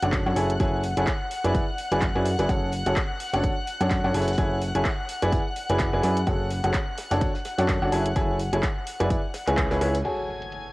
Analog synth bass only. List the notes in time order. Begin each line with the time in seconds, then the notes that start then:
0.03 F#1
0.26 F#2
0.36 F#1
0.97 F#1
1.44 F#1
1.92 F#1
2.15 F#2
2.39 F#1
2.86 F#1
3.33 F#1
3.81 F#2
4.04 F#2
4.14 F#1
4.38 F#1
4.75 F#1
5.22 F#1
5.70 F#1
5.93 F#1
6.03 F#2
6.27 F#1
6.64 F#1
7.11 F#1
7.58 F#2
7.82 F#1
7.92 F#1
8.16 F#1
8.53 F#1
9.00 F#1
9.47 C#2
9.71 C#2
9.81 C#2